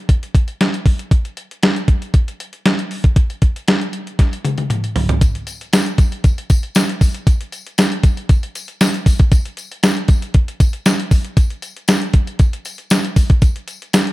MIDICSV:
0, 0, Header, 1, 2, 480
1, 0, Start_track
1, 0, Tempo, 512821
1, 1042, Time_signature, 4, 2, 24, 8
1, 13223, End_track
2, 0, Start_track
2, 0, Title_t, "Drums"
2, 84, Note_on_c, 9, 36, 94
2, 84, Note_on_c, 9, 42, 76
2, 178, Note_off_c, 9, 36, 0
2, 178, Note_off_c, 9, 42, 0
2, 215, Note_on_c, 9, 42, 54
2, 308, Note_off_c, 9, 42, 0
2, 324, Note_on_c, 9, 36, 102
2, 329, Note_on_c, 9, 42, 80
2, 417, Note_off_c, 9, 36, 0
2, 423, Note_off_c, 9, 42, 0
2, 447, Note_on_c, 9, 42, 45
2, 541, Note_off_c, 9, 42, 0
2, 568, Note_on_c, 9, 42, 88
2, 569, Note_on_c, 9, 38, 97
2, 662, Note_off_c, 9, 42, 0
2, 663, Note_off_c, 9, 38, 0
2, 692, Note_on_c, 9, 42, 57
2, 786, Note_off_c, 9, 42, 0
2, 802, Note_on_c, 9, 36, 89
2, 806, Note_on_c, 9, 46, 65
2, 895, Note_off_c, 9, 36, 0
2, 900, Note_off_c, 9, 46, 0
2, 929, Note_on_c, 9, 42, 51
2, 1023, Note_off_c, 9, 42, 0
2, 1042, Note_on_c, 9, 36, 112
2, 1045, Note_on_c, 9, 42, 92
2, 1135, Note_off_c, 9, 36, 0
2, 1139, Note_off_c, 9, 42, 0
2, 1170, Note_on_c, 9, 42, 51
2, 1264, Note_off_c, 9, 42, 0
2, 1283, Note_on_c, 9, 42, 70
2, 1376, Note_off_c, 9, 42, 0
2, 1416, Note_on_c, 9, 42, 52
2, 1509, Note_off_c, 9, 42, 0
2, 1522, Note_on_c, 9, 42, 97
2, 1528, Note_on_c, 9, 38, 118
2, 1616, Note_off_c, 9, 42, 0
2, 1622, Note_off_c, 9, 38, 0
2, 1650, Note_on_c, 9, 42, 51
2, 1744, Note_off_c, 9, 42, 0
2, 1760, Note_on_c, 9, 36, 92
2, 1760, Note_on_c, 9, 42, 66
2, 1853, Note_off_c, 9, 42, 0
2, 1854, Note_off_c, 9, 36, 0
2, 1890, Note_on_c, 9, 42, 44
2, 1984, Note_off_c, 9, 42, 0
2, 2001, Note_on_c, 9, 42, 76
2, 2003, Note_on_c, 9, 36, 96
2, 2094, Note_off_c, 9, 42, 0
2, 2096, Note_off_c, 9, 36, 0
2, 2135, Note_on_c, 9, 42, 54
2, 2228, Note_off_c, 9, 42, 0
2, 2248, Note_on_c, 9, 42, 81
2, 2342, Note_off_c, 9, 42, 0
2, 2367, Note_on_c, 9, 42, 46
2, 2460, Note_off_c, 9, 42, 0
2, 2485, Note_on_c, 9, 42, 81
2, 2486, Note_on_c, 9, 38, 106
2, 2579, Note_off_c, 9, 42, 0
2, 2580, Note_off_c, 9, 38, 0
2, 2610, Note_on_c, 9, 42, 57
2, 2704, Note_off_c, 9, 42, 0
2, 2723, Note_on_c, 9, 46, 60
2, 2817, Note_off_c, 9, 46, 0
2, 2845, Note_on_c, 9, 42, 48
2, 2847, Note_on_c, 9, 36, 85
2, 2938, Note_off_c, 9, 42, 0
2, 2940, Note_off_c, 9, 36, 0
2, 2959, Note_on_c, 9, 42, 92
2, 2960, Note_on_c, 9, 36, 117
2, 3053, Note_off_c, 9, 42, 0
2, 3054, Note_off_c, 9, 36, 0
2, 3089, Note_on_c, 9, 42, 48
2, 3182, Note_off_c, 9, 42, 0
2, 3199, Note_on_c, 9, 42, 76
2, 3201, Note_on_c, 9, 36, 92
2, 3293, Note_off_c, 9, 42, 0
2, 3295, Note_off_c, 9, 36, 0
2, 3334, Note_on_c, 9, 42, 50
2, 3427, Note_off_c, 9, 42, 0
2, 3441, Note_on_c, 9, 42, 99
2, 3447, Note_on_c, 9, 38, 122
2, 3535, Note_off_c, 9, 42, 0
2, 3541, Note_off_c, 9, 38, 0
2, 3570, Note_on_c, 9, 42, 50
2, 3664, Note_off_c, 9, 42, 0
2, 3679, Note_on_c, 9, 42, 68
2, 3773, Note_off_c, 9, 42, 0
2, 3811, Note_on_c, 9, 42, 46
2, 3904, Note_off_c, 9, 42, 0
2, 3922, Note_on_c, 9, 42, 77
2, 3923, Note_on_c, 9, 36, 105
2, 3928, Note_on_c, 9, 38, 48
2, 4015, Note_off_c, 9, 42, 0
2, 4016, Note_off_c, 9, 36, 0
2, 4022, Note_off_c, 9, 38, 0
2, 4053, Note_on_c, 9, 42, 61
2, 4146, Note_off_c, 9, 42, 0
2, 4161, Note_on_c, 9, 48, 71
2, 4166, Note_on_c, 9, 42, 80
2, 4255, Note_off_c, 9, 48, 0
2, 4259, Note_off_c, 9, 42, 0
2, 4283, Note_on_c, 9, 42, 46
2, 4287, Note_on_c, 9, 48, 58
2, 4377, Note_off_c, 9, 42, 0
2, 4381, Note_off_c, 9, 48, 0
2, 4399, Note_on_c, 9, 47, 69
2, 4403, Note_on_c, 9, 42, 88
2, 4493, Note_off_c, 9, 47, 0
2, 4497, Note_off_c, 9, 42, 0
2, 4529, Note_on_c, 9, 42, 55
2, 4622, Note_off_c, 9, 42, 0
2, 4640, Note_on_c, 9, 43, 94
2, 4642, Note_on_c, 9, 46, 65
2, 4733, Note_off_c, 9, 43, 0
2, 4735, Note_off_c, 9, 46, 0
2, 4765, Note_on_c, 9, 42, 51
2, 4767, Note_on_c, 9, 43, 90
2, 4858, Note_off_c, 9, 42, 0
2, 4861, Note_off_c, 9, 43, 0
2, 4880, Note_on_c, 9, 36, 118
2, 4880, Note_on_c, 9, 42, 98
2, 4882, Note_on_c, 9, 54, 56
2, 4973, Note_off_c, 9, 42, 0
2, 4974, Note_off_c, 9, 36, 0
2, 4976, Note_off_c, 9, 54, 0
2, 5009, Note_on_c, 9, 42, 53
2, 5102, Note_off_c, 9, 42, 0
2, 5118, Note_on_c, 9, 42, 77
2, 5126, Note_on_c, 9, 54, 52
2, 5212, Note_off_c, 9, 42, 0
2, 5220, Note_off_c, 9, 54, 0
2, 5253, Note_on_c, 9, 42, 50
2, 5346, Note_off_c, 9, 42, 0
2, 5361, Note_on_c, 9, 42, 103
2, 5364, Note_on_c, 9, 54, 78
2, 5367, Note_on_c, 9, 38, 114
2, 5455, Note_off_c, 9, 42, 0
2, 5457, Note_off_c, 9, 54, 0
2, 5461, Note_off_c, 9, 38, 0
2, 5488, Note_on_c, 9, 42, 60
2, 5581, Note_off_c, 9, 42, 0
2, 5599, Note_on_c, 9, 42, 76
2, 5600, Note_on_c, 9, 36, 94
2, 5605, Note_on_c, 9, 54, 34
2, 5692, Note_off_c, 9, 42, 0
2, 5694, Note_off_c, 9, 36, 0
2, 5698, Note_off_c, 9, 54, 0
2, 5729, Note_on_c, 9, 42, 46
2, 5823, Note_off_c, 9, 42, 0
2, 5841, Note_on_c, 9, 42, 77
2, 5844, Note_on_c, 9, 36, 101
2, 5847, Note_on_c, 9, 54, 37
2, 5935, Note_off_c, 9, 42, 0
2, 5937, Note_off_c, 9, 36, 0
2, 5940, Note_off_c, 9, 54, 0
2, 5973, Note_on_c, 9, 42, 58
2, 6066, Note_off_c, 9, 42, 0
2, 6081, Note_on_c, 9, 54, 57
2, 6084, Note_on_c, 9, 36, 103
2, 6086, Note_on_c, 9, 42, 88
2, 6175, Note_off_c, 9, 54, 0
2, 6177, Note_off_c, 9, 36, 0
2, 6180, Note_off_c, 9, 42, 0
2, 6206, Note_on_c, 9, 42, 44
2, 6300, Note_off_c, 9, 42, 0
2, 6316, Note_on_c, 9, 54, 90
2, 6325, Note_on_c, 9, 42, 87
2, 6326, Note_on_c, 9, 38, 112
2, 6410, Note_off_c, 9, 54, 0
2, 6419, Note_off_c, 9, 42, 0
2, 6420, Note_off_c, 9, 38, 0
2, 6453, Note_on_c, 9, 42, 59
2, 6546, Note_off_c, 9, 42, 0
2, 6563, Note_on_c, 9, 36, 86
2, 6564, Note_on_c, 9, 54, 56
2, 6566, Note_on_c, 9, 46, 66
2, 6656, Note_off_c, 9, 36, 0
2, 6657, Note_off_c, 9, 54, 0
2, 6659, Note_off_c, 9, 46, 0
2, 6688, Note_on_c, 9, 42, 53
2, 6781, Note_off_c, 9, 42, 0
2, 6803, Note_on_c, 9, 36, 115
2, 6804, Note_on_c, 9, 42, 102
2, 6804, Note_on_c, 9, 54, 56
2, 6896, Note_off_c, 9, 36, 0
2, 6897, Note_off_c, 9, 54, 0
2, 6898, Note_off_c, 9, 42, 0
2, 6933, Note_on_c, 9, 42, 58
2, 7026, Note_off_c, 9, 42, 0
2, 7043, Note_on_c, 9, 42, 69
2, 7049, Note_on_c, 9, 54, 50
2, 7136, Note_off_c, 9, 42, 0
2, 7142, Note_off_c, 9, 54, 0
2, 7175, Note_on_c, 9, 42, 53
2, 7268, Note_off_c, 9, 42, 0
2, 7281, Note_on_c, 9, 54, 89
2, 7282, Note_on_c, 9, 42, 97
2, 7288, Note_on_c, 9, 38, 126
2, 7375, Note_off_c, 9, 54, 0
2, 7376, Note_off_c, 9, 42, 0
2, 7382, Note_off_c, 9, 38, 0
2, 7410, Note_on_c, 9, 42, 57
2, 7504, Note_off_c, 9, 42, 0
2, 7520, Note_on_c, 9, 42, 74
2, 7522, Note_on_c, 9, 36, 100
2, 7524, Note_on_c, 9, 54, 32
2, 7614, Note_off_c, 9, 42, 0
2, 7615, Note_off_c, 9, 36, 0
2, 7617, Note_off_c, 9, 54, 0
2, 7650, Note_on_c, 9, 42, 45
2, 7743, Note_off_c, 9, 42, 0
2, 7762, Note_on_c, 9, 42, 75
2, 7764, Note_on_c, 9, 36, 113
2, 7768, Note_on_c, 9, 54, 35
2, 7855, Note_off_c, 9, 42, 0
2, 7857, Note_off_c, 9, 36, 0
2, 7861, Note_off_c, 9, 54, 0
2, 7891, Note_on_c, 9, 42, 55
2, 7985, Note_off_c, 9, 42, 0
2, 8004, Note_on_c, 9, 54, 59
2, 8007, Note_on_c, 9, 42, 83
2, 8098, Note_off_c, 9, 54, 0
2, 8101, Note_off_c, 9, 42, 0
2, 8125, Note_on_c, 9, 42, 47
2, 8218, Note_off_c, 9, 42, 0
2, 8242, Note_on_c, 9, 54, 92
2, 8245, Note_on_c, 9, 42, 90
2, 8246, Note_on_c, 9, 38, 117
2, 8336, Note_off_c, 9, 54, 0
2, 8338, Note_off_c, 9, 42, 0
2, 8339, Note_off_c, 9, 38, 0
2, 8370, Note_on_c, 9, 42, 54
2, 8463, Note_off_c, 9, 42, 0
2, 8482, Note_on_c, 9, 36, 94
2, 8483, Note_on_c, 9, 46, 73
2, 8487, Note_on_c, 9, 54, 54
2, 8575, Note_off_c, 9, 36, 0
2, 8577, Note_off_c, 9, 46, 0
2, 8580, Note_off_c, 9, 54, 0
2, 8604, Note_on_c, 9, 42, 49
2, 8608, Note_on_c, 9, 36, 100
2, 8698, Note_off_c, 9, 42, 0
2, 8702, Note_off_c, 9, 36, 0
2, 8720, Note_on_c, 9, 42, 102
2, 8721, Note_on_c, 9, 36, 116
2, 8726, Note_on_c, 9, 54, 53
2, 8813, Note_off_c, 9, 42, 0
2, 8815, Note_off_c, 9, 36, 0
2, 8819, Note_off_c, 9, 54, 0
2, 8850, Note_on_c, 9, 42, 51
2, 8943, Note_off_c, 9, 42, 0
2, 8958, Note_on_c, 9, 42, 69
2, 8970, Note_on_c, 9, 54, 53
2, 9052, Note_off_c, 9, 42, 0
2, 9064, Note_off_c, 9, 54, 0
2, 9094, Note_on_c, 9, 42, 53
2, 9187, Note_off_c, 9, 42, 0
2, 9200, Note_on_c, 9, 42, 103
2, 9206, Note_on_c, 9, 38, 125
2, 9208, Note_on_c, 9, 54, 90
2, 9293, Note_off_c, 9, 42, 0
2, 9299, Note_off_c, 9, 38, 0
2, 9301, Note_off_c, 9, 54, 0
2, 9328, Note_on_c, 9, 42, 49
2, 9421, Note_off_c, 9, 42, 0
2, 9437, Note_on_c, 9, 42, 76
2, 9441, Note_on_c, 9, 36, 97
2, 9445, Note_on_c, 9, 54, 30
2, 9530, Note_off_c, 9, 42, 0
2, 9534, Note_off_c, 9, 36, 0
2, 9538, Note_off_c, 9, 54, 0
2, 9569, Note_on_c, 9, 42, 51
2, 9663, Note_off_c, 9, 42, 0
2, 9679, Note_on_c, 9, 42, 77
2, 9683, Note_on_c, 9, 36, 115
2, 9773, Note_off_c, 9, 42, 0
2, 9777, Note_off_c, 9, 36, 0
2, 9811, Note_on_c, 9, 42, 60
2, 9905, Note_off_c, 9, 42, 0
2, 9923, Note_on_c, 9, 36, 99
2, 9923, Note_on_c, 9, 54, 56
2, 9925, Note_on_c, 9, 42, 84
2, 10017, Note_off_c, 9, 36, 0
2, 10017, Note_off_c, 9, 54, 0
2, 10018, Note_off_c, 9, 42, 0
2, 10045, Note_on_c, 9, 42, 48
2, 10138, Note_off_c, 9, 42, 0
2, 10161, Note_on_c, 9, 54, 94
2, 10163, Note_on_c, 9, 42, 92
2, 10164, Note_on_c, 9, 38, 109
2, 10254, Note_off_c, 9, 54, 0
2, 10257, Note_off_c, 9, 42, 0
2, 10258, Note_off_c, 9, 38, 0
2, 10292, Note_on_c, 9, 42, 61
2, 10386, Note_off_c, 9, 42, 0
2, 10401, Note_on_c, 9, 54, 57
2, 10402, Note_on_c, 9, 36, 92
2, 10403, Note_on_c, 9, 46, 68
2, 10495, Note_off_c, 9, 36, 0
2, 10495, Note_off_c, 9, 54, 0
2, 10497, Note_off_c, 9, 46, 0
2, 10526, Note_on_c, 9, 42, 48
2, 10619, Note_off_c, 9, 42, 0
2, 10641, Note_on_c, 9, 36, 125
2, 10641, Note_on_c, 9, 42, 93
2, 10643, Note_on_c, 9, 54, 57
2, 10735, Note_off_c, 9, 36, 0
2, 10735, Note_off_c, 9, 42, 0
2, 10736, Note_off_c, 9, 54, 0
2, 10768, Note_on_c, 9, 42, 49
2, 10862, Note_off_c, 9, 42, 0
2, 10879, Note_on_c, 9, 42, 75
2, 10883, Note_on_c, 9, 54, 55
2, 10973, Note_off_c, 9, 42, 0
2, 10977, Note_off_c, 9, 54, 0
2, 11012, Note_on_c, 9, 42, 50
2, 11106, Note_off_c, 9, 42, 0
2, 11117, Note_on_c, 9, 54, 83
2, 11119, Note_on_c, 9, 42, 104
2, 11125, Note_on_c, 9, 38, 108
2, 11210, Note_off_c, 9, 54, 0
2, 11213, Note_off_c, 9, 42, 0
2, 11219, Note_off_c, 9, 38, 0
2, 11247, Note_on_c, 9, 42, 56
2, 11341, Note_off_c, 9, 42, 0
2, 11358, Note_on_c, 9, 42, 72
2, 11361, Note_on_c, 9, 36, 97
2, 11452, Note_off_c, 9, 42, 0
2, 11454, Note_off_c, 9, 36, 0
2, 11488, Note_on_c, 9, 42, 53
2, 11582, Note_off_c, 9, 42, 0
2, 11598, Note_on_c, 9, 42, 78
2, 11603, Note_on_c, 9, 36, 113
2, 11604, Note_on_c, 9, 54, 34
2, 11692, Note_off_c, 9, 42, 0
2, 11696, Note_off_c, 9, 36, 0
2, 11698, Note_off_c, 9, 54, 0
2, 11731, Note_on_c, 9, 42, 63
2, 11824, Note_off_c, 9, 42, 0
2, 11839, Note_on_c, 9, 54, 53
2, 11846, Note_on_c, 9, 42, 77
2, 11933, Note_off_c, 9, 54, 0
2, 11939, Note_off_c, 9, 42, 0
2, 11964, Note_on_c, 9, 42, 49
2, 12057, Note_off_c, 9, 42, 0
2, 12077, Note_on_c, 9, 54, 96
2, 12084, Note_on_c, 9, 42, 93
2, 12085, Note_on_c, 9, 38, 105
2, 12170, Note_off_c, 9, 54, 0
2, 12178, Note_off_c, 9, 42, 0
2, 12179, Note_off_c, 9, 38, 0
2, 12210, Note_on_c, 9, 42, 61
2, 12304, Note_off_c, 9, 42, 0
2, 12320, Note_on_c, 9, 54, 57
2, 12321, Note_on_c, 9, 36, 88
2, 12323, Note_on_c, 9, 46, 71
2, 12414, Note_off_c, 9, 54, 0
2, 12415, Note_off_c, 9, 36, 0
2, 12416, Note_off_c, 9, 46, 0
2, 12446, Note_on_c, 9, 42, 48
2, 12448, Note_on_c, 9, 36, 96
2, 12540, Note_off_c, 9, 42, 0
2, 12541, Note_off_c, 9, 36, 0
2, 12557, Note_on_c, 9, 54, 55
2, 12561, Note_on_c, 9, 36, 113
2, 12561, Note_on_c, 9, 42, 89
2, 12651, Note_off_c, 9, 54, 0
2, 12655, Note_off_c, 9, 36, 0
2, 12655, Note_off_c, 9, 42, 0
2, 12690, Note_on_c, 9, 42, 55
2, 12784, Note_off_c, 9, 42, 0
2, 12801, Note_on_c, 9, 42, 75
2, 12804, Note_on_c, 9, 54, 46
2, 12894, Note_off_c, 9, 42, 0
2, 12898, Note_off_c, 9, 54, 0
2, 12936, Note_on_c, 9, 42, 52
2, 13029, Note_off_c, 9, 42, 0
2, 13042, Note_on_c, 9, 42, 91
2, 13042, Note_on_c, 9, 54, 93
2, 13048, Note_on_c, 9, 38, 123
2, 13135, Note_off_c, 9, 42, 0
2, 13135, Note_off_c, 9, 54, 0
2, 13141, Note_off_c, 9, 38, 0
2, 13170, Note_on_c, 9, 42, 52
2, 13223, Note_off_c, 9, 42, 0
2, 13223, End_track
0, 0, End_of_file